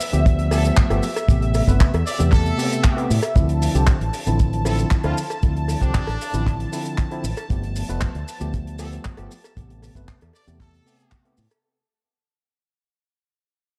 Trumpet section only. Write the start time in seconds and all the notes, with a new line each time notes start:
0.51 A4
2.06 D5
2.32 A4
4.66 A4
5.04 F4
5.82 D4
8.80 A4
10.35 D5
10.60 A4